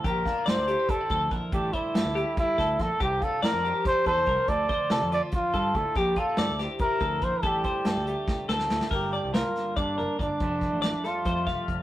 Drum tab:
CC |--------------|--------------|--------------|--------------|
HH |x-x-x-x-x-x-x-|x-x-x-x-x-x-x-|x-x-x-x-x-x-x-|x-x-x-x-x-x-x-|
SD |--o-o---------|----o-----o-o-|----o---------|----o-o-------|
BD |o-o-----o-o-o-|o-o-----o-o-o-|o-o-----o-o-o-|o-o-----o-o-o-|

CC |--------------|--------------|x-------------|--------------|
HH |x-x-x-x-x-x-x-|x-x-x-x-------|--x-x-x-x-x-x-|x-x-x-x-x-x-x-|
SD |----o-o-------|----o---o-oooo|----o-o-------|--o-o-o-o-o---|
BD |o-o-----o-o-o-|o-o-----o-----|o-------o---o-|o-o-----o-o-o-|